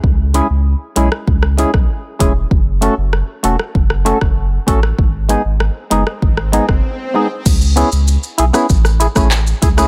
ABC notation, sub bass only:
X:1
M:4/4
L:1/16
Q:1/4=97
K:C#m
V:1 name="Sub bass" clef=bass
C,,3 C,,2 z B,,, z C,,3 B,,, z2 E,,,2 | F,,,3 F,,,2 z E,,, z F,,,3 F,,,3 A,,,2 | G,,,3 G,,,2 z F,,, z G,,,3 F,,, z4 | C,,3 C,,2 z B,,, z A,,,3 A,,,3 C,,2 |]